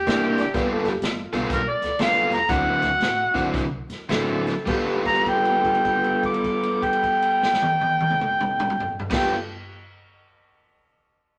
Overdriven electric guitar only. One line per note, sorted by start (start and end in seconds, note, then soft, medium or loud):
0.07 0.43 C3 medium
0.07 0.43 A#3 medium
0.07 0.43 D4 medium
0.07 0.43 E4 loud
0.54 0.90 G3 medium
0.54 0.90 B3 medium
0.54 0.91 F4 medium
0.54 0.91 A4 medium
1.33 1.60 G3 medium
1.33 1.60 B3 medium
1.33 1.60 F4 medium
1.33 1.60 A4 medium
1.99 2.37 G3 medium
1.99 2.37 B3 medium
1.99 2.37 F4 medium
1.99 2.37 A4 loud
2.49 2.88 D3 medium
2.49 2.88 F#3 medium
2.49 2.88 C4 medium
2.49 2.88 E4 medium
3.35 3.65 D3 medium
3.35 3.65 F#3 medium
3.35 3.64 C4 medium
3.35 3.64 E4 loud
4.09 4.53 D3 medium
4.09 4.53 F#3 medium
4.09 4.53 C4 medium
4.09 4.53 E4 medium
4.66 9.02 G3 medium
4.66 9.03 B3 medium
4.66 9.03 F4 medium
4.70 9.04 A4 medium
9.10 9.33 G3 medium
9.10 9.34 B3 medium
9.10 9.35 F4 medium
9.14 9.35 A4 loud